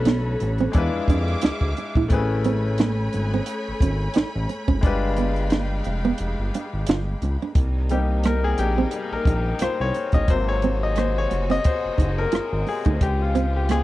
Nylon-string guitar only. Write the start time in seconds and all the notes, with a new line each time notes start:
0.06 B3
0.42 muted nylon-string guitar stroke
0.60 C4
1.10 D4
1.43 F4
1.78 muted nylon-string guitar stroke
1.97 E4
2.45 C4
2.80 A#3
3.14 muted nylon-string guitar stroke
3.34 C4
3.82 C#4
4.16 D#4
4.49 muted nylon-string guitar stroke
4.68 C#4
5.18 B3
5.53 A#3
5.87 muted nylon-string guitar stroke
6.05 B3
6.55 D4
6.89 F4
7.23 muted nylon-string guitar stroke
7.42 D4
7.92 C4
8.25 A#3
8.60 muted nylon-string guitar stroke
8.78 C4
9.27 D#4
9.62 F4
9.96 muted nylon-string guitar stroke
10.15 D#4
10.64 C4
10.97 A#3
11.31 muted nylon-string guitar stroke
11.50 C4
11.98 D#4
12.33 F4
12.67 muted nylon-string guitar stroke
12.86 D#4
13.35 C4
13.69 A#3